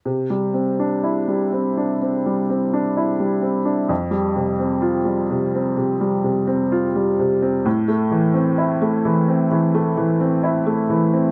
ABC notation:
X:1
M:4/4
L:1/16
Q:1/4=64
K:C
V:1 name="Upright piano"
C, G, C D E G, C D C G, C D E G, C D | F,, G, C, C F G, C, C C, G, C, C F G, C, C | A,, A, E, C E A, E, C E, A, E, C E A, E, C |]